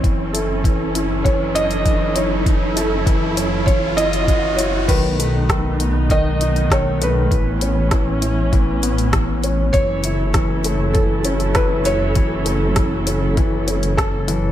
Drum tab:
CC |----------------|----------------|x---------------|----------------|
HH |x-x-x-x-x-xxx-x-|x-x-x-x-x-xxx-x-|x-x-x-x-x-xxx-x-|x-x-x-x-x-xxx-x-|
SD |----------------|----------------|----r-------r---|----r-------r---|
BD |o---o---o---o---|o---o---o---o---|o---o---o---o---|o---o---o---o---|

CC |----------------|----------------|
HH |x-x-x-x-x-xxx-x-|x-x-x-x-x-xxx-x-|
SD |----r-------r---|----r-------r---|
BD |o---o---o---o---|o---o---o---o---|